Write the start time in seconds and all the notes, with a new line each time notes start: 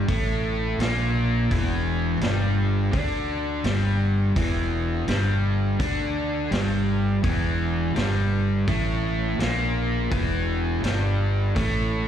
0.08 A1 A2 A3, kick, open hi-hat
0.79 A#1 A#2 A#3, snare, open hi-hat
1.51 E1 E2 E3, kick, open hi-hat
2.21 G1 G2 G3, snare, open hi-hat
2.92 D2 D3 D4, kick, open hi-hat
3.64 G1 G2 G3, snare, open hi-hat
4.36 E1 E2 E3, kick, open hi-hat
5.08 G1 G2 G3, snare, open hi-hat
5.79 D2 D3 D4, kick, open hi-hat
6.51 G1 G2 G3, snare, open hi-hat
7.23 E1 E2 E3, kick, open hi-hat
7.95 G1 G2 G3, snare, open hi-hat
8.68 A1 A2 A3, kick, open hi-hat
9.39 A#1 A#2 A#3, snare, open hi-hat
10.11 E1 E2 E3, kick, open hi-hat
10.83 G1 G2 G3, snare, open hi-hat
11.55 A1 A2 A3, kick, open hi-hat